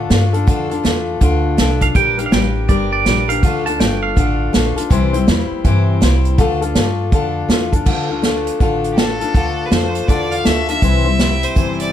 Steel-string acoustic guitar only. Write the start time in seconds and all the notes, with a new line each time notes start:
Already playing: D3 D4 F4 A4
0.10 A3 D4 F4 A4
0.33 D4 F4 A4
0.47 D3 A3 D4 F4 A4
0.69 D4 F4 A4
0.83 A3 D4 F4 A4
1.21 D3 A3 D4 F4 A4
1.57 A3 D4 F4 A4
1.81 D4 F4 A4
1.95 G3 D4 G4 A#4
2.18 D4 G4 A#4
2.31 G3 D4 G4 A#4
2.68 G3 D4 G4 A#4
3.05 G3 D4 G4 A#4
3.28 D4 G4 A#4
3.43 D3 A3 D4 F4 A4
3.65 D4 F4 A4
3.79 A3 D4 F4 A4
4.16 D3 A3 D4 F4 A4
4.53 A3 D4 F4 A4
4.76 D4 F4 A4
4.90 C3 E3 G3 C4 E4 C5
5.13 G3 C4 E4 C5
5.27 G3 C4 E4 C5
5.64 C3 E3 G3 C4 E4 C5
6.01 G3 C4 E4 C5
6.38 D3 A3 D4 F4 A4
6.61 D4 F4 A4
6.75 A3 D4 F4 A4
7.12 D3 A3 D4 F4 A4
7.48 A3 D4 F4 A4
7.72 D4 F4 A4
7.86 D3 A3 D4 F4 A4
8.09 D4 F4 A4
8.22 A3 D4 F4 A4
8.60 D3 A3 D4 F4 A4
8.96 A3 D4 F4 A4
9.20 D4 F4 A4
9.34 D3 A3 D4 F4 A4
9.70 A3 D4 F4 A4
10.08 D3 A3 D4 F4 A4
10.45 A3 D4 F4 A4
10.68 D4 F4 A4
10.82 C3 E3 G3 C4 E4 C5
11.05 G3 C4 E4 C5
11.18 G3 C4 E4 C5
11.55 C3 E3 G3 C4 E4 C5